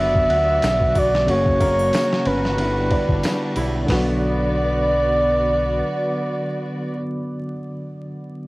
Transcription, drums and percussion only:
0.15 kick loud
0.30 ride medium
0.62 snare loud
0.62 ride medium
0.62 tambourine medium
0.81 kick medium
0.95 kick loud
0.95 ride medium
0.95 triangle medium
1.15 snare soft
1.28 ride medium
1.46 kick loud
1.60 kick medium
1.60 ride medium
1.60 triangle medium
1.79 triangle medium
1.93 snare loud
1.93 ride medium
1.93 tambourine medium
2.13 snare medium
2.25 ride medium
2.45 snare soft
2.58 ride medium
2.91 kick medium
2.91 ride medium
3.09 kick medium
3.23 snare loud
3.23 ride medium
3.23 tambourine medium
3.56 ride medium
3.56 triangle medium
3.88 kick loud
3.88 snare loud
3.88 open hi-hat medium

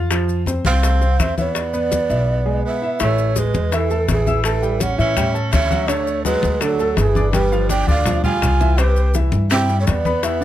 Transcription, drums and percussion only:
0.11 high bongo medium
0.11 high conga soft
0.11 maracas medium
0.28 high conga soft
0.28 maracas soft
0.46 high bongo medium
0.46 high conga medium
0.46 maracas medium
0.65 high bongo soft
0.65 high conga medium
0.65 maracas soft
0.83 high bongo medium
0.83 high conga soft
0.83 maracas medium
1.01 high bongo soft
1.01 high conga soft
1.01 maracas soft
1.20 high bongo medium
1.20 low bongo medium
1.20 high conga medium
1.20 maracas medium
1.38 high bongo soft
1.38 high conga medium
1.38 maracas soft
1.55 high bongo medium
1.55 high conga soft
1.55 maracas medium
1.74 high conga soft
1.74 maracas soft
1.91 high bongo medium
1.91 high conga medium
1.91 maracas medium
2.10 high bongo soft
2.10 high conga soft
2.10 maracas soft
3.00 high bongo medium
3.00 high conga soft
3.00 maracas medium
3.18 high conga soft
3.18 maracas soft
3.36 high bongo medium
3.36 high conga medium
3.36 maracas medium
3.54 high bongo soft
3.54 high conga medium
3.54 maracas soft
3.72 high bongo medium
3.72 high conga soft
3.72 maracas medium
3.90 high bongo soft
3.90 high conga soft
3.90 maracas soft
4.08 high bongo medium
4.08 low bongo medium
4.08 high conga medium
4.08 maracas medium
4.26 high bongo soft
4.26 high conga medium
4.26 maracas soft
4.44 high bongo medium
4.44 high conga soft
4.44 maracas medium
4.62 high conga soft
4.62 maracas soft
4.80 high bongo medium
4.80 high conga medium
4.80 maracas medium
4.99 high bongo soft
4.99 high conga soft
4.99 maracas soft
5.17 high bongo medium
5.17 high conga soft
5.17 low conga medium
5.17 maracas medium
5.35 high conga soft
5.35 maracas soft
5.53 high bongo medium
5.53 low bongo medium
5.53 high conga medium
5.53 maracas medium
5.71 high bongo soft
5.71 high conga medium
5.71 maracas soft
5.88 high bongo medium
5.88 maracas medium
6.07 high conga soft
6.07 maracas soft
6.25 high bongo medium
6.25 high conga medium
6.25 maracas medium
6.43 high bongo soft
6.43 high conga medium
6.43 maracas soft
6.61 high bongo medium
6.61 high conga soft
6.61 maracas medium
6.79 high bongo soft
6.79 high conga soft
6.79 maracas soft
6.97 high bongo medium
6.97 low bongo medium
6.97 high conga medium
6.97 maracas medium
7.15 high bongo soft
7.15 high conga medium
7.15 maracas soft
7.33 high bongo medium
7.33 high conga medium
7.33 maracas medium
7.52 maracas soft
7.69 high bongo medium
7.69 high conga medium
7.69 maracas medium
7.87 high bongo soft
7.87 high conga medium
7.87 maracas soft
8.05 high bongo medium
8.05 low conga medium
8.05 maracas medium
8.24 low conga medium
8.24 maracas soft
8.42 high bongo medium
8.42 low bongo medium
8.42 low conga medium
8.42 maracas medium
8.60 high bongo soft
8.60 low conga medium
8.60 maracas soft
8.78 high bongo medium
8.78 high conga soft
8.78 maracas medium
8.96 high conga soft
8.96 maracas soft
9.14 high bongo medium
9.14 high conga medium
9.14 maracas medium
9.32 high bongo soft
9.32 high conga medium
9.32 maracas soft
9.51 high bongo medium
9.51 high conga soft
9.51 maracas medium
9.68 high bongo soft
9.68 high conga soft
9.68 maracas soft
9.87 high bongo medium
9.87 low bongo medium
9.87 high conga medium
9.87 maracas medium
10.05 high bongo soft
10.05 high conga medium
10.05 maracas soft
10.23 high bongo medium
10.23 high conga soft
10.23 maracas medium

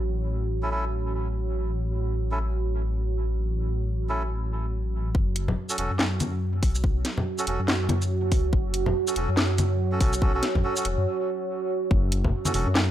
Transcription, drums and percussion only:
5.15 kick loud
5.36 closed hi-hat medium
5.48 low conga medium
5.69 shaker medium
5.78 closed hi-hat medium
5.99 snare loud
5.99 clap medium
6.20 closed hi-hat medium
6.20 high conga medium
6.20 shaker soft
6.63 kick loud
6.63 open hi-hat medium
6.75 shaker medium
6.84 kick loud
7.05 snare medium
7.05 closed hi-hat medium
7.18 low conga medium
7.38 shaker medium
7.47 closed hi-hat medium
7.68 snare loud
7.68 clap medium
7.89 closed hi-hat medium
7.89 high conga loud
8.02 closed hi-hat soft
8.02 shaker medium
8.32 kick loud
8.32 open hi-hat medium
8.53 kick loud
8.74 closed hi-hat medium
8.86 low conga medium
9.07 shaker medium
9.16 closed hi-hat medium
9.37 snare loud
9.37 clap medium
9.58 closed hi-hat medium
9.58 high conga medium
9.58 shaker medium
10.01 kick loud
10.01 open hi-hat medium
10.13 shaker medium
10.22 kick loud
10.43 snare medium
10.43 closed hi-hat medium
10.55 kick medium
10.55 low conga medium
10.76 shaker medium
10.85 closed hi-hat medium
11.91 kick loud
12.12 closed hi-hat medium
12.24 kick medium
12.24 low conga medium
12.45 high conga medium
12.45 shaker medium
12.54 open hi-hat medium
12.75 snare loud
12.75 clap medium

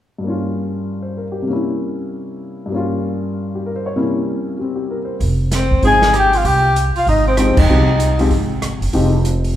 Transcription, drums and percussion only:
5.20 kick soft
5.20 open hi-hat soft
5.51 snare soft
5.51 closed hi-hat medium
5.71 kick soft
5.83 kick soft
5.83 open hi-hat soft
6.02 snare soft
6.13 cross-stick medium
6.13 closed hi-hat soft
6.33 open hi-hat soft
6.45 kick soft
6.45 open hi-hat soft
6.76 closed hi-hat medium
6.96 open hi-hat soft
7.07 kick soft
7.07 open hi-hat soft
7.37 cross-stick medium
7.37 closed hi-hat medium
7.57 kick medium
7.57 crash medium
8.00 closed hi-hat medium
8.19 open hi-hat soft
8.31 kick soft
8.31 open hi-hat soft
8.62 cross-stick medium
8.62 closed hi-hat medium
8.82 open hi-hat soft
8.93 kick soft
8.93 open hi-hat soft
9.25 closed hi-hat medium
9.44 open hi-hat soft

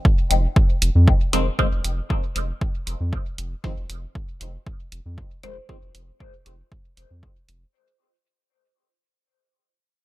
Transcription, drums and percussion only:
0.05 kick loud
0.31 closed hi-hat medium
0.56 kick loud
0.82 closed hi-hat medium
1.08 kick loud
1.33 closed hi-hat medium
1.59 kick loud
1.84 closed hi-hat medium
2.10 kick loud
2.36 closed hi-hat medium
2.61 kick loud
2.87 closed hi-hat medium
3.13 kick loud
3.38 closed hi-hat medium
3.64 kick loud
3.90 closed hi-hat medium
4.15 kick loud
4.41 closed hi-hat medium
4.67 kick loud
4.92 closed hi-hat medium
5.18 kick loud
5.43 closed hi-hat medium
5.69 kick loud
5.95 closed hi-hat medium
6.20 kick medium
6.46 closed hi-hat medium
6.72 kick loud
6.97 closed hi-hat medium
7.23 kick loud
7.49 closed hi-hat medium

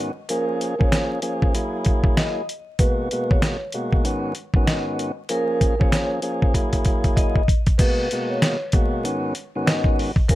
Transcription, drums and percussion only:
0.29 closed hi-hat loud
0.61 closed hi-hat medium
0.81 kick loud
0.92 snare loud
0.92 closed hi-hat medium
1.22 closed hi-hat medium
1.42 kick medium
1.55 closed hi-hat medium
1.84 kick medium
1.84 closed hi-hat medium
2.04 kick medium
2.17 snare loud
2.17 closed hi-hat medium
2.49 closed hi-hat medium
2.79 kick loud
2.79 closed hi-hat loud
3.11 closed hi-hat medium
3.31 kick loud
3.42 snare loud
3.42 closed hi-hat medium
3.72 closed hi-hat medium
3.92 kick medium
4.05 closed hi-hat medium
4.35 closed hi-hat medium
4.54 kick medium
4.68 snare loud
4.68 closed hi-hat medium
4.99 closed hi-hat medium
5.29 closed hi-hat loud
5.61 kick medium
5.61 closed hi-hat medium
5.81 kick loud
5.92 snare loud
5.92 closed hi-hat medium
6.22 closed hi-hat medium
6.42 kick medium
6.54 kick medium
6.54 closed hi-hat medium
6.73 kick medium
6.73 closed hi-hat medium
6.85 kick medium
6.85 closed hi-hat medium
7.04 kick medium
7.04 closed hi-hat soft
7.17 kick medium
7.17 closed hi-hat medium
7.35 kick medium
7.48 kick medium
7.48 closed hi-hat medium
7.66 kick medium
7.66 closed hi-hat medium
7.79 kick loud
7.79 closed hi-hat loud
7.79 crash loud
8.11 closed hi-hat medium
8.42 snare loud
8.42 closed hi-hat medium
8.72 kick loud
8.72 closed hi-hat medium
9.05 closed hi-hat medium
9.35 closed hi-hat medium
9.67 snare loud
9.67 closed hi-hat medium
9.84 kick loud
9.99 open hi-hat soft
10.16 kick medium
10.29 kick loud
10.29 closed hi-hat loud

